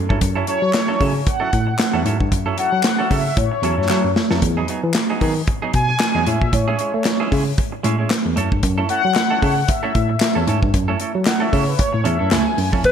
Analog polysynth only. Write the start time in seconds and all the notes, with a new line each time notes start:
0.48 C#5
1.01 G#5
1.27 F#5
2.59 F#5
3.11 E5
3.37 C#5
5.75 G#5
6.27 E5
6.53 C#5
8.90 F#5
9.41 F#5
9.68 E5
11.27 F#5
11.41 E5
11.53 C#5
11.68 B4
11.79 C#5
12.05 E5
12.31 G#5